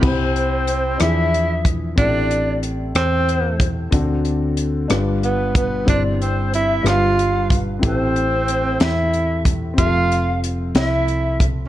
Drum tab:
CC |x-----|------|------|------|
HH |-xxxxx|xxxxxx|xxxxxx|xxxxxx|
SD |---r--|---r--|---r--|---r--|
BD |o----o|o----o|o----o|o----o|

CC |------|------|
HH |xxxxxx|xxxxxx|
SD |---o--|---o--|
BD |o----o|o----o|